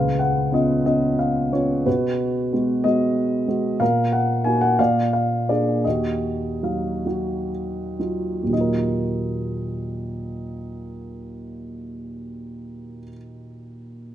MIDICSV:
0, 0, Header, 1, 2, 480
1, 0, Start_track
1, 0, Key_signature, -6, "minor"
1, 0, Tempo, 668896
1, 1340, Time_signature, 6, 3, 24, 8
1, 1814, Tempo, 651466
1, 3734, Tempo, 715990
1, 4214, Tempo, 783290
1, 4694, Tempo, 883652
1, 5174, Tempo, 1003344
1, 5654, Tempo, 1034483
1, 8265, End_track
2, 0, Start_track
2, 0, Title_t, "Grand piano"
2, 0, Program_c, 0, 0
2, 0, Note_on_c, 0, 37, 41
2, 0, Note_on_c, 0, 71, 38
2, 0, Note_on_c, 0, 77, 52
2, 46, Control_c, 0, 64, 127
2, 138, Note_on_c, 0, 78, 51
2, 144, Note_off_c, 0, 77, 0
2, 374, Note_on_c, 0, 59, 29
2, 379, Note_on_c, 0, 65, 31
2, 381, Note_on_c, 0, 61, 29
2, 386, Note_on_c, 0, 75, 49
2, 388, Note_off_c, 0, 78, 0
2, 593, Note_off_c, 0, 71, 0
2, 604, Note_off_c, 0, 59, 0
2, 606, Note_off_c, 0, 61, 0
2, 606, Note_off_c, 0, 75, 0
2, 608, Note_off_c, 0, 65, 0
2, 615, Note_on_c, 0, 59, 29
2, 617, Note_on_c, 0, 61, 28
2, 617, Note_on_c, 0, 75, 51
2, 618, Note_on_c, 0, 65, 32
2, 840, Note_off_c, 0, 75, 0
2, 853, Note_on_c, 0, 77, 49
2, 1081, Note_off_c, 0, 59, 0
2, 1083, Note_off_c, 0, 61, 0
2, 1083, Note_off_c, 0, 65, 0
2, 1095, Note_on_c, 0, 59, 29
2, 1096, Note_on_c, 0, 73, 50
2, 1100, Note_on_c, 0, 61, 27
2, 1101, Note_on_c, 0, 65, 32
2, 1103, Note_off_c, 0, 77, 0
2, 1311, Note_off_c, 0, 37, 0
2, 1331, Note_off_c, 0, 59, 0
2, 1333, Note_off_c, 0, 61, 0
2, 1334, Note_off_c, 0, 65, 0
2, 1335, Note_on_c, 0, 71, 49
2, 1338, Note_on_c, 0, 47, 42
2, 1343, Note_on_c, 0, 66, 36
2, 1346, Note_off_c, 0, 73, 0
2, 1349, Control_c, 0, 64, 0
2, 1471, Control_c, 0, 64, 127
2, 1808, Note_off_c, 0, 66, 0
2, 1813, Note_on_c, 0, 56, 31
2, 1815, Note_on_c, 0, 59, 28
2, 1819, Note_on_c, 0, 66, 34
2, 2039, Note_off_c, 0, 56, 0
2, 2041, Note_off_c, 0, 59, 0
2, 2043, Note_on_c, 0, 75, 60
2, 2044, Note_off_c, 0, 66, 0
2, 2050, Note_on_c, 0, 56, 31
2, 2052, Note_on_c, 0, 59, 28
2, 2055, Note_on_c, 0, 66, 34
2, 2070, Note_off_c, 0, 71, 0
2, 2503, Note_off_c, 0, 56, 0
2, 2504, Note_off_c, 0, 59, 0
2, 2508, Note_off_c, 0, 66, 0
2, 2514, Note_on_c, 0, 56, 32
2, 2515, Note_on_c, 0, 59, 30
2, 2519, Note_on_c, 0, 66, 34
2, 2726, Note_off_c, 0, 47, 0
2, 2747, Note_off_c, 0, 56, 0
2, 2747, Note_off_c, 0, 59, 0
2, 2749, Note_off_c, 0, 66, 0
2, 2750, Note_on_c, 0, 77, 62
2, 2751, Note_on_c, 0, 46, 44
2, 2764, Note_on_c, 0, 70, 44
2, 2767, Control_c, 0, 64, 0
2, 2774, Note_off_c, 0, 75, 0
2, 2914, Control_c, 0, 64, 127
2, 2990, Note_on_c, 0, 78, 58
2, 2999, Note_off_c, 0, 77, 0
2, 3226, Note_on_c, 0, 80, 62
2, 3233, Note_on_c, 0, 58, 34
2, 3236, Note_on_c, 0, 63, 29
2, 3239, Note_on_c, 0, 66, 34
2, 3243, Note_off_c, 0, 78, 0
2, 3350, Note_on_c, 0, 78, 64
2, 3358, Note_off_c, 0, 80, 0
2, 3457, Note_off_c, 0, 70, 0
2, 3459, Note_off_c, 0, 46, 0
2, 3474, Note_off_c, 0, 58, 0
2, 3475, Note_off_c, 0, 63, 0
2, 3477, Note_off_c, 0, 66, 0
2, 3481, Note_on_c, 0, 77, 64
2, 3482, Note_off_c, 0, 78, 0
2, 3482, Note_on_c, 0, 46, 43
2, 3492, Note_on_c, 0, 74, 43
2, 3493, Control_c, 0, 64, 0
2, 3615, Control_c, 0, 64, 127
2, 3722, Note_off_c, 0, 77, 0
2, 3733, Note_on_c, 0, 77, 53
2, 3964, Note_off_c, 0, 74, 0
2, 3971, Note_on_c, 0, 58, 30
2, 3974, Note_on_c, 0, 62, 28
2, 3974, Note_on_c, 0, 74, 52
2, 3976, Note_on_c, 0, 68, 32
2, 3977, Note_off_c, 0, 77, 0
2, 4193, Note_off_c, 0, 46, 0
2, 4200, Note_off_c, 0, 74, 0
2, 4208, Note_off_c, 0, 58, 0
2, 4209, Note_off_c, 0, 62, 0
2, 4210, Note_off_c, 0, 68, 0
2, 4210, Note_on_c, 0, 75, 47
2, 4217, Note_on_c, 0, 39, 41
2, 4224, Control_c, 0, 64, 0
2, 4225, Note_on_c, 0, 66, 34
2, 4317, Control_c, 0, 64, 127
2, 4692, Note_on_c, 0, 54, 24
2, 4693, Note_on_c, 0, 63, 22
2, 4697, Note_on_c, 0, 77, 26
2, 4916, Note_off_c, 0, 54, 0
2, 4919, Note_off_c, 0, 63, 0
2, 4922, Note_off_c, 0, 66, 0
2, 4924, Note_on_c, 0, 54, 24
2, 4928, Note_on_c, 0, 63, 22
2, 4930, Note_on_c, 0, 66, 27
2, 5162, Note_off_c, 0, 77, 0
2, 5386, Note_off_c, 0, 75, 0
2, 5392, Note_off_c, 0, 54, 0
2, 5393, Note_off_c, 0, 63, 0
2, 5395, Note_off_c, 0, 66, 0
2, 5403, Note_on_c, 0, 54, 21
2, 5406, Note_on_c, 0, 63, 20
2, 5407, Note_on_c, 0, 65, 25
2, 5604, Note_off_c, 0, 39, 0
2, 5611, Note_on_c, 0, 39, 26
2, 5627, Note_on_c, 0, 46, 23
2, 5636, Note_off_c, 0, 54, 0
2, 5644, Note_on_c, 0, 54, 23
2, 5647, Note_off_c, 0, 63, 0
2, 5648, Note_off_c, 0, 65, 0
2, 5658, Note_on_c, 0, 75, 36
2, 5661, Note_on_c, 0, 63, 23
2, 5662, Control_c, 0, 64, 0
2, 5677, Note_on_c, 0, 65, 23
2, 5694, Note_on_c, 0, 70, 29
2, 5743, Control_c, 0, 64, 127
2, 7722, Note_off_c, 0, 39, 0
2, 7738, Note_off_c, 0, 46, 0
2, 7754, Note_off_c, 0, 54, 0
2, 7768, Note_off_c, 0, 75, 0
2, 7771, Note_off_c, 0, 63, 0
2, 7787, Note_off_c, 0, 65, 0
2, 7804, Note_off_c, 0, 70, 0
2, 8265, End_track
0, 0, End_of_file